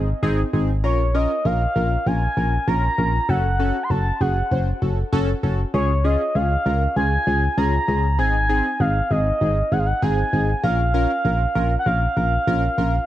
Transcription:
Already playing: fm bass G#1
0.23 fm bass G#1, synth keys C4 D#4 G#4
0.53 fm bass G#1, synth keys C4 D#4 G#4
0.84 fm bass A#1, synth keys C#4 F4 A#4, analog synth lead C#5
1.14 synth keys C#4 F4 A#4, analog synth lead D#5
1.45 fm bass A#1, synth keys C#4 F4 A#4, analog synth lead F5
1.76 fm bass A#1, synth keys C#4 F4 A#4
2.06 fm bass A#1, synth keys C#4 F4 A#4, analog synth lead G#5
2.37 fm bass A#1, synth keys C#4 F4 A#4
2.68 fm bass A#1, synth keys C#4 F4 A#4, analog synth lead A#5
2.98 fm bass A#1, synth keys C#4 F4 A#4
3.29 fm bass F#1, synth keys C#4 F#4 A4, analog synth lead F#5
3.59 synth keys C#4 F#4 A4
3.83 analog synth lead C6
3.90 fm bass F#1, synth keys C#4 F#4 A4, analog synth lead A5
4.21 fm bass F#1, synth keys C#4 F#4 G#4, analog synth lead F#5
4.51 fm bass F#1, synth keys C#4 F#4 C5
4.82 fm bass F#1, synth keys C#4 F#4 A4
5.12 fm bass F#1, synth keys C#4 F#4 A4
5.43 fm bass F#1, synth keys C#4 F#4 A4
5.74 fm bass C#2, synth keys C#4 F4 G#4, analog synth lead C#5
6.04 synth keys C#4 F4 G#4, analog synth lead D#5
6.35 fm bass C#2, synth keys C#4 F4 G#4, analog synth lead F5
6.66 fm bass C#2, synth keys C#4 F4 A#4
6.96 fm bass C#2, synth keys C#4 F4 G#4, analog synth lead G#5
7.27 fm bass C#2, synth keys C#4 F4 G#4
7.58 fm bass C#2, synth keys C#4 F4 G#4, analog synth lead A#5
7.88 fm bass C#2, synth keys C#4 F4 G#4
8.19 fm bass G#1, synth keys C4 D#4 G#4, analog synth lead G#5
8.49 synth keys C4 D#4 G#4
8.80 fm bass G#1, synth keys C4 D#4 G#4, analog synth lead F5
9.11 fm bass G#1, synth keys C4 D#4 G#4, analog synth lead D#5
9.41 fm bass G#1, synth keys C4 D#4 G#4
9.72 fm bass G#1, synth keys C4 D#4 G#4, analog synth lead F#5
9.79 analog synth lead F5
9.86 analog synth lead F#5
10.02 fm bass G#1, synth keys C4 D#4 G#4, analog synth lead G#5
10.33 fm bass G#1, synth keys C4 D#4 G#4
10.63 fm bass A#1, synth keys C#4 F4 A#4, analog synth lead F5
10.94 synth keys C#4 F4 A#4
11.25 fm bass A#1, synth keys C#4 F4 A#4
11.55 fm bass A#1, synth keys C#4 F4 A#4
11.79 analog synth lead F#5
11.86 fm bass A#1, synth keys C#4 F4 A#4, analog synth lead F5
12.17 fm bass A#1, synth keys C#4 F4 A#4
12.47 fm bass A#1, synth keys C#4 F4 A#4
12.78 fm bass A#1, synth keys C#4 F4 A#4

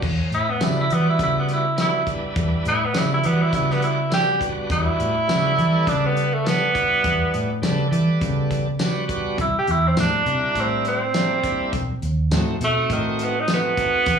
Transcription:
0.02 fingered electric bass E2, kick, crash
0.31 fingered electric bass A2, tenor saxophone E4, closed hi-hat
0.50 tenor saxophone B3
0.60 fingered electric bass C#3, tonewheel organ G3 B3 D4 F#4, snare, closed hi-hat, tambourine
0.64 tenor saxophone E4
0.81 tenor saxophone E4
0.89 fingered electric bass E3, tonewheel organ G3 B3 F#4 D5, closed hi-hat
0.94 tenor saxophone B3
1.10 tenor saxophone E4
1.19 fingered electric bass C#3, kick, closed hi-hat
1.24 tenor saxophone E4
1.39 tenor saxophone B3
1.49 closed hi-hat
1.53 tenor saxophone E4
1.77 tonewheel organ G3 B3 D4 F#4, snare, closed hi-hat, tambourine
1.81 tenor saxophone E4
2.06 tonewheel organ G3 B3 D4 E4, kick, closed hi-hat
2.36 fingered electric bass E2, kick, closed hi-hat
2.65 fingered electric bass A2, tenor saxophone E4, closed hi-hat
2.85 tenor saxophone B3
2.93 fingered electric bass C#3, tonewheel organ G3 B3 D4 F#4, snare, closed hi-hat, tambourine
2.99 tenor saxophone E4
3.14 tenor saxophone E4
3.23 fingered electric bass E3, tonewheel organ G3 B3 F#4 D5, tenor saxophone B3, closed hi-hat
3.42 tenor saxophone E4
3.53 fingered electric bass C#3, tenor saxophone E4, kick, closed hi-hat
3.70 tenor saxophone B3, snare
3.82 tenor saxophone E4, closed hi-hat
4.09 tonewheel organ G3 B3 D4 F#4, snare, closed hi-hat, tambourine
4.14 tenor saxophone G4
4.38 tonewheel organ G3 B3 D4 F#4, kick, closed hi-hat
4.70 fingered electric bass E2, tenor saxophone E4, kick, closed hi-hat
5.00 fingered electric bass A2, closed hi-hat
5.27 fingered electric bass C#3, tonewheel organ G3 B3 D4 F#4, snare, closed hi-hat, tambourine
5.56 fingered electric bass E3, tonewheel organ G3 B3 A4 D5, closed hi-hat
5.87 fingered electric bass C#3, tenor saxophone D4, kick, closed hi-hat
6.06 tenor saxophone B3
6.17 closed hi-hat
6.34 tenor saxophone A3
6.44 tonewheel organ G3 B3 D4 A4, tenor saxophone B3, snare, closed hi-hat, tambourine
6.74 tonewheel organ G3 B3 D4 E4, kick, closed hi-hat
7.04 fingered electric bass E2, kick, closed hi-hat
7.34 fingered electric bass A2, closed hi-hat
7.62 fingered electric bass C#3, tonewheel organ G3 B3 D4 A4, snare, closed hi-hat, tambourine
7.91 fingered electric bass E3, tonewheel organ G3 B3 A4 D5, closed hi-hat
8.21 fingered electric bass C#3, kick, closed hi-hat
8.51 kick, closed hi-hat
8.79 tonewheel organ G3 B3 D4 F#4, snare, closed hi-hat, tambourine
9.08 tonewheel organ G3 B3 D4 F#4, kick, closed hi-hat
9.38 fingered electric bass C2, tenor saxophone E4, kick, closed hi-hat
9.58 tenor saxophone G4
9.67 fingered electric bass E2, tenor saxophone E4, closed hi-hat
9.88 tenor saxophone C4
9.96 fingered electric bass A2, tonewheel organ G3 A#3 D4 E4, snare, closed hi-hat, tambourine
10.00 tenor saxophone D4
10.26 fingered electric bass C3, tonewheel organ G3 D4 E4 A#4, closed hi-hat
10.55 fingered electric bass A2, kick, closed hi-hat
10.60 tenor saxophone C4
10.85 tenor saxophone C4, closed hi-hat
11.14 tonewheel organ G3 A#3 D4 E4, snare, closed hi-hat, tambourine
11.43 tonewheel organ G3 A#3 D4 E4, kick, closed hi-hat
11.73 fingered electric bass B1, kick, closed hi-hat
12.02 fingered electric bass D#2, closed hi-hat
12.31 fingered electric bass A2, tonewheel organ A3 C4 D#4 F#4, snare, closed hi-hat, tambourine
12.61 fingered electric bass B2, tonewheel organ A3 C4 D#4 F#4, tenor saxophone A3, closed hi-hat
12.90 fingered electric bass A2, tenor saxophone D#3, kick, closed hi-hat
13.19 closed hi-hat
13.23 tenor saxophone B3
13.40 tenor saxophone D#4
13.48 tonewheel organ A3 C4 D#4 F#4, snare, closed hi-hat, tambourine
13.53 tenor saxophone B3
13.77 tonewheel organ A3 C4 D#4 F#4, kick, closed hi-hat
14.06 fingered electric bass E2, kick, closed hi-hat

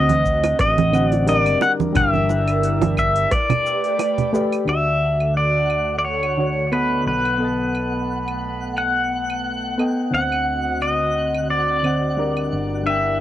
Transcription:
Already playing: fretless electric bass D2, synth keys D3 C4 D#5 F#5, analog synth pad D3 C4 F#4, pedal steel guitar D#5
0.09 open hi-hat, high conga, cabasa
0.25 kick, cabasa
0.44 open hi-hat, high bongo, cabasa, claves
0.59 fretless electric bass A1, pedal steel guitar D#5, kick, cross-stick, open hi-hat, cabasa
0.78 open hi-hat, high conga, cabasa
0.91 synth keys D3 C4 D#5 F#5, cabasa, claves
1.09 pedal steel guitar D5, open hi-hat, high bongo, cabasa
1.26 synth keys G3 D4 A#4 D5, pedal steel guitar D5, open hi-hat, cabasa
1.46 open hi-hat, cabasa, claves
1.61 analog synth pad G3 D4 E4 A#4, pedal steel guitar F#5, high bongo, cabasa
1.80 high conga, cabasa
1.92 fretless electric bass G1, synth keys G3 D4, kick, open hi-hat, low conga, cabasa, claves
1.97 synth keys A#4 G5, pedal steel guitar E5
2.14 high conga, cabasa
2.29 high bongo, cabasa
2.48 open hi-hat, cabasa, claves
2.63 open hi-hat, cabasa
2.82 open hi-hat, high bongo, high conga, cabasa
2.97 pedal steel guitar E5, kick, cabasa, claves
3.16 open hi-hat, cabasa
3.31 analog synth pad A3 G4 B4 D5, pedal steel guitar D5, kick, cross-stick, open hi-hat, cabasa
3.50 open hi-hat, high bongo, low conga, cabasa, claves
3.66 cabasa
3.84 open hi-hat, cabasa
3.99 open hi-hat, high bongo, cabasa, claves
4.18 open hi-hat, low conga, cabasa
4.33 synth keys A3 G4 B4 D5, cabasa
4.53 open hi-hat, cabasa, claves
4.65 fretless electric bass D2, synth keys D3 D4, analog synth pad D3 A3 F#4 A4, pedal steel guitar E5, synth texture F#5, claves
4.69 synth keys F#4 D5
5.20 claves
5.37 pedal steel guitar D5
5.70 claves
5.99 pedal steel guitar D5
6.05 pedal steel guitar C#5
6.23 claves
6.37 synth keys D3 D4 F#4 C#5
6.71 synth keys B3 A4 D#5 F#5, pedal steel guitar B4, claves
7.06 fretless electric bass B1, analog synth pad B3, pedal steel guitar B4
7.25 claves
7.38 synth keys B3 A4
7.42 synth keys D#5 A5
7.75 claves
8.28 claves
8.77 pedal steel guitar F#5, claves
9.30 claves
9.78 synth keys B3 A4 D#5 G5, claves
10.11 fretless electric bass D2, synth keys D3 C4, analog synth pad D3 C4 F#4
10.15 synth keys D#5 F#5, pedal steel guitar F#5
10.32 claves
10.82 pedal steel guitar D#5, claves
11.34 claves
11.50 pedal steel guitar D5
11.83 synth keys D3 C4 D#5 F#5, claves
12.17 synth keys G3 D4 A#4 D5
12.37 claves
12.52 fretless electric bass G1, analog synth pad G3 D4 E4 A#4
12.83 synth keys G3 D4, pedal steel guitar E5, claves
12.87 synth keys A#4 G5

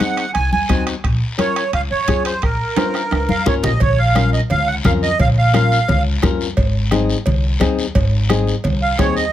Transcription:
Already playing: accordion F#5
0.00 nylon-string guitar C4 D#4 G#4, bombo rim, high conga, high timbale, short guiro
0.17 bombo rim, high timbale, short guiro
0.34 upright bass C2, accordion G#5, bombo rim, high timbale, long guiro
0.52 upright bass D#2, accordion G#5, high conga
0.69 upright bass D#2, nylon-string guitar C4 D#4 F#4, bombo low, bombo rim, high conga, high timbale, short guiro
0.87 bombo rim, high timbale, short guiro
1.04 upright bass A#1, bombo low, bombo rim, high timbale, long guiro
1.38 nylon-string guitar C#4 F4 A#4, accordion C#5, bombo rim, high conga, high timbale, short guiro
1.56 bombo rim, high timbale, short guiro
1.73 upright bass C#2, accordion F5, bombo rim, high timbale, long guiro
1.91 upright bass F2, accordion C#5
2.08 upright bass F2, nylon-string guitar C#4 F4 G#4, bombo low, bombo rim, high conga, high timbale, short guiro
2.25 accordion C5, bombo rim, high timbale, short guiro
2.42 upright bass A#1, accordion A#4, bombo low, bombo rim, high timbale, long guiro
2.76 nylon-string guitar C#4 F4 C5, bombo rim, high conga, high timbale, short guiro
2.94 bombo rim, high timbale, short guiro
3.11 upright bass C#2, bombo rim, high timbale, long guiro
3.29 upright bass F2, accordion F5, high conga
3.46 upright bass G#1, nylon-string guitar C#4 F4 A#4, accordion C#5, bombo low, bombo rim, high conga, low timbale, short guiro
3.63 upright bass A#1, accordion D#5, bombo rim, low conga, low timbale, short guiro
3.80 upright bass A#1, accordion C#5, bombo low, cowbell, high conga, low conga, long guiro
3.98 accordion F5
4.15 nylon-string guitar C#4 F4 A#4, bombo rim, cowbell, high conga, short guiro
4.33 accordion D#5, short guiro
4.50 upright bass C#2, accordion F5, cowbell, high conga, low conga, long guiro
4.67 accordion F#5
4.84 upright bass F2, nylon-string guitar C#4 F4 A#4, accordion F5, bombo low, bombo rim, cowbell, high conga, low conga, short guiro
5.03 accordion D#5, short guiro
5.19 upright bass A#1, accordion F5, bombo low, cowbell, high conga, low conga, long guiro
5.38 accordion F5
5.53 nylon-string guitar C#4 F4 A#4, bombo rim, cowbell, high conga, short guiro
5.72 short guiro
5.88 upright bass C#2, cowbell, high conga, low conga, long guiro
6.22 upright bass F2, nylon-string guitar C#4 F4 A#4, bombo low, bombo rim, cowbell, high conga, low timbale, short guiro
6.41 short guiro
6.57 upright bass G#1, bombo low, cowbell, high conga, long guiro
6.91 nylon-string guitar C4 D#4 G#4, bombo rim, cowbell, high conga, short guiro
7.09 short guiro
7.26 upright bass C2, cowbell, high conga, low conga, long guiro
7.60 upright bass D#2, nylon-string guitar C4 D#4 G#4, bombo low, bombo rim, cowbell, high conga, short guiro
7.79 short guiro
7.95 upright bass G#1, bombo low, cowbell, high conga, long guiro
8.29 nylon-string guitar C4 D#4 G#4, bombo rim, cowbell, high conga, short guiro
8.47 short guiro
8.64 upright bass C2, cowbell, high conga, low conga, long guiro
8.82 accordion F5
8.99 upright bass D#2, nylon-string guitar C4 D#4 G#4, accordion C#5, bombo low, bombo rim, cowbell, high conga, low conga, low timbale, short guiro
9.16 accordion D#5, short guiro

